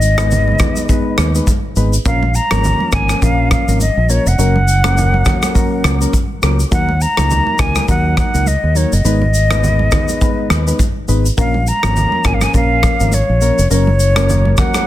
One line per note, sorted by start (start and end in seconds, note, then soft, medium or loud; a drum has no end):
0.00 0.56 G#1 loud
0.00 1.35 D#5 medium
0.00 shaker medium
0.18 0.57 G#3 medium
0.18 0.57 B3 medium
0.18 0.57 D#4 medium
0.18 0.57 B4 medium
0.18 cross-stick loud
0.18 high conga medium
0.18 shaker medium
0.31 low conga medium
0.31 shaker medium
0.48 high conga medium
0.59 0.87 G#3 medium
0.59 0.87 B3 medium
0.59 0.87 D#4 medium
0.59 0.87 B4 medium
0.59 kick medium
0.59 cross-stick medium
0.59 low conga medium
0.59 shaker medium
0.76 high conga medium
0.76 shaker medium
0.89 1.31 G#3 medium
0.89 1.31 B3 medium
0.89 1.31 D#4 medium
0.89 1.31 B4 loud
0.89 kick loud
0.89 shaker medium
1.18 1.39 D#2 medium
1.18 cross-stick loud
1.18 high conga medium
1.18 shaker medium
1.35 1.49 G#3 medium
1.35 1.49 B3 medium
1.35 1.49 D#4 medium
1.35 1.49 B4 medium
1.35 shaker medium
1.47 kick medium
1.47 high conga medium
1.47 shaker medium
1.76 1.97 G#1 medium
1.76 1.94 G#3 medium
1.76 1.95 B3 medium
1.76 1.95 D#4 medium
1.76 1.95 B4 medium
1.76 shaker medium
1.93 shaker medium
2.06 2.38 A#1 loud
2.06 2.24 F3 loud
2.06 2.24 A#3 medium
2.06 2.24 C#4 medium
2.06 2.24 A#4 loud
2.06 2.37 F5 loud
2.06 kick loud
2.06 shaker medium
2.23 high conga medium
2.35 2.93 A#5 loud
2.35 shaker medium
2.51 2.72 G#1 medium
2.51 2.90 F3 medium
2.51 2.90 A#3 medium
2.51 2.90 C#4 medium
2.51 2.90 A#4 medium
2.51 cross-stick loud
2.51 high conga medium
2.51 shaker medium
2.64 low conga medium
2.64 shaker medium
2.80 high conga medium
2.92 3.13 G#1 medium
2.92 3.20 F3 medium
2.92 3.20 A#3 medium
2.92 3.20 C#4 medium
2.92 3.20 A#4 medium
2.92 3.24 G#5 loud
2.92 kick loud
2.92 cross-stick loud
2.92 low conga medium
2.92 shaker medium
3.09 cross-stick medium
3.09 high conga medium
3.09 shaker medium
3.22 3.55 A#1 loud
3.22 3.64 F3 medium
3.22 3.64 A#3 medium
3.22 3.64 C#4 medium
3.22 3.64 A#4 loud
3.22 3.51 F5 loud
3.22 kick medium
3.22 shaker medium
3.51 3.79 F5 medium
3.51 kick loud
3.51 cross-stick loud
3.51 high conga medium
3.51 shaker medium
3.68 3.89 G#1 medium
3.68 3.82 F3 medium
3.68 3.82 A#3 medium
3.68 3.82 C#4 medium
3.68 3.82 A#4 medium
3.68 shaker medium
3.80 4.11 D#5 medium
3.80 high conga medium
3.80 shaker medium
3.97 4.18 A#1 medium
4.09 4.27 F3 medium
4.09 4.27 A#3 medium
4.09 4.28 C#4 medium
4.09 4.28 A#4 medium
4.09 4.29 C#5 medium
4.09 shaker medium
4.26 4.35 F1 medium
4.26 6.02 F#5 loud
4.26 shaker medium
4.38 5.22 F#1 loud
4.38 4.56 F#3 medium
4.38 4.57 A#3 medium
4.38 4.57 C#4 medium
4.38 4.57 A#4 loud
4.38 shaker medium
4.56 high conga medium
4.68 shaker medium
4.84 5.23 F#3 medium
4.84 5.23 A#3 medium
4.84 5.23 C#4 medium
4.84 5.23 A#4 medium
4.84 cross-stick loud
4.84 high conga medium
4.84 shaker medium
4.97 low conga medium
4.97 shaker medium
5.14 high conga medium
5.25 5.53 F#3 medium
5.25 5.53 A#3 medium
5.25 5.53 C#4 medium
5.25 5.53 A#4 medium
5.25 kick medium
5.25 cross-stick loud
5.25 low conga medium
5.25 shaker medium
5.43 cross-stick loud
5.43 high conga medium
5.43 shaker medium
5.55 5.97 F#3 medium
5.55 5.97 A#3 medium
5.55 5.97 C#4 medium
5.55 5.97 A#4 loud
5.55 kick medium
5.55 shaker medium
5.84 6.05 C#2 medium
5.84 cross-stick loud
5.84 high conga medium
5.84 shaker medium
6.01 6.15 F#3 medium
6.01 6.15 A#3 medium
6.01 6.15 C#4 medium
6.01 6.15 A#4 medium
6.01 shaker medium
6.13 kick medium
6.13 high conga medium
6.13 shaker medium
6.42 6.63 C#2 medium
6.42 6.60 F#3 medium
6.42 6.60 A#3 medium
6.42 6.61 C#4 medium
6.42 6.61 A#4 medium
6.42 cross-stick loud
6.42 shaker medium
6.60 shaker medium
6.71 7.04 D#2 loud
6.71 6.89 F#3 medium
6.71 6.90 A#3 medium
6.71 6.90 D#4 medium
6.71 6.90 A#4 loud
6.71 7.03 F#5 loud
6.71 kick loud
6.71 shaker medium
6.89 high conga medium
7.01 7.61 A#5 loud
7.01 shaker medium
7.17 7.38 C#2 medium
7.17 7.56 F#3 medium
7.17 7.56 A#3 medium
7.17 7.56 D#4 medium
7.17 7.56 A#4 medium
7.17 cross-stick loud
7.17 high conga medium
7.17 shaker medium
7.30 low conga medium
7.30 shaker medium
7.47 high conga medium
7.59 7.80 C#2 medium
7.59 7.86 F#3 medium
7.59 7.86 A#3 medium
7.59 7.86 D#4 medium
7.59 7.86 A#4 medium
7.59 7.89 G#5 loud
7.59 kick medium
7.59 cross-stick medium
7.59 low conga medium
7.59 shaker medium
7.76 cross-stick medium
7.76 high conga medium
7.76 shaker medium
7.88 8.21 D#2 loud
7.88 8.30 F#3 medium
7.88 8.30 A#3 medium
7.88 8.30 D#4 medium
7.88 8.30 A#4 medium
7.88 8.16 F#5 loud
7.88 kick medium
7.88 shaker medium
8.17 8.49 F#5 medium
8.17 kick loud
8.17 cross-stick loud
8.17 high conga medium
8.17 shaker medium
8.34 8.55 C#2 medium
8.34 8.48 F#3 medium
8.34 8.48 A#3 medium
8.34 8.48 D#4 medium
8.34 8.48 A#4 medium
8.34 shaker medium
8.46 8.78 D#5 medium
8.46 high conga medium
8.46 shaker medium
8.63 8.84 D#2 medium
8.75 8.93 F#3 medium
8.75 8.94 A#3 medium
8.75 8.94 D#4 medium
8.75 8.94 A#4 medium
8.75 8.95 C#5 medium
8.75 shaker medium
8.93 9.01 F#1 medium
8.93 10.68 D#5 medium
8.93 shaker medium
9.04 9.88 G#1 loud
9.04 9.23 G#3 medium
9.04 9.23 B3 medium
9.04 9.23 D#4 medium
9.04 9.23 B4 loud
9.04 shaker medium
9.22 high conga medium
9.34 shaker medium
9.51 9.89 G#3 medium
9.51 9.89 B3 medium
9.51 9.89 D#4 medium
9.51 9.89 B4 medium
9.51 cross-stick loud
9.51 high conga medium
9.51 shaker medium
9.64 low conga medium
9.64 shaker medium
9.79 high conga medium
9.91 10.19 G#3 medium
9.91 10.19 B3 medium
9.91 10.19 D#4 medium
9.91 10.19 B4 medium
9.91 kick loud
9.91 cross-stick medium
9.91 low conga medium
9.91 shaker medium
10.09 high conga medium
10.09 shaker medium
10.21 10.63 G#3 medium
10.21 10.63 B3 medium
10.21 10.63 D#4 medium
10.21 10.63 B4 medium
10.21 kick medium
10.21 shaker medium
10.50 10.71 D#2 medium
10.50 cross-stick loud
10.50 high conga medium
10.50 shaker medium
10.67 10.81 G#3 medium
10.67 10.81 B3 medium
10.67 10.81 D#4 medium
10.67 10.81 B4 medium
10.67 shaker medium
10.79 kick medium
10.79 high conga medium
10.79 shaker medium
11.08 11.29 G#1 medium
11.08 11.26 G#3 medium
11.08 11.26 B3 medium
11.08 11.27 D#4 medium
11.08 11.27 B4 medium
11.08 shaker medium
11.25 shaker medium
11.37 11.70 A#1 loud
11.37 11.56 F3 loud
11.37 11.56 A#3 medium
11.37 11.56 C#4 medium
11.37 11.56 A#4 loud
11.37 11.69 F5 loud
11.37 kick loud
11.37 shaker medium
11.54 high conga medium
11.67 12.28 A#5 loud
11.67 shaker medium
11.83 12.04 G#1 medium
11.83 12.22 F3 medium
11.83 12.22 A#3 medium
11.83 12.22 C#4 medium
11.83 12.22 A#4 medium
11.83 cross-stick loud
11.83 high conga medium
11.83 shaker medium
11.96 low conga medium
11.96 shaker medium
12.12 high conga medium
12.24 12.46 G#1 medium
12.24 12.52 F3 medium
12.24 12.52 A#3 medium
12.24 12.52 C#4 medium
12.24 12.53 A#4 medium
12.24 12.35 G#5 loud
12.24 kick medium
12.24 cross-stick medium
12.24 low conga medium
12.24 shaker medium
12.34 12.44 F5 medium
12.41 12.55 G#5 loud
12.41 cross-stick medium
12.41 high conga medium
12.41 shaker medium
12.54 12.87 A#1 loud
12.54 12.96 F3 medium
12.54 12.96 A#3 medium
12.54 12.96 C#4 medium
12.54 12.96 A#4 loud
12.54 13.15 F5 loud
12.54 kick medium
12.54 shaker medium
12.83 kick loud
12.83 cross-stick loud
12.83 high conga medium
12.83 shaker medium
13.00 13.21 G#1 medium
13.00 13.14 F3 medium
13.00 13.14 A#3 medium
13.00 13.14 C#4 medium
13.00 13.14 A#4 medium
13.00 shaker medium
13.12 13.71 C#5 medium
13.12 high conga medium
13.12 shaker medium
13.29 13.50 A#1 medium
13.41 13.59 F3 medium
13.41 13.60 A#3 medium
13.41 13.60 C#4 medium
13.41 13.60 A#4 medium
13.41 shaker medium
13.58 13.67 F1 medium
13.58 shaker medium
13.70 14.54 F#1 loud
13.70 13.88 F#3 medium
13.70 13.89 A#3 medium
13.70 13.89 C#4 medium
13.70 13.89 A#4 loud
13.70 14.60 C#5 loud
13.70 shaker medium
13.87 high conga medium
14.00 shaker medium
14.16 14.55 F#3 medium
14.16 14.55 A#3 medium
14.16 14.55 C#4 medium
14.16 14.55 A#4 medium
14.16 cross-stick loud
14.16 high conga medium
14.16 shaker medium
14.29 low conga medium
14.29 shaker medium
14.45 high conga medium
14.57 14.85 F#3 medium
14.57 14.85 A#3 medium
14.57 14.86 C#4 medium
14.57 14.86 A#4 medium
14.57 14.87 F#5 medium
14.57 kick medium
14.57 cross-stick loud
14.57 low conga medium
14.57 shaker medium
14.74 cross-stick medium
14.74 high conga medium
14.74 shaker medium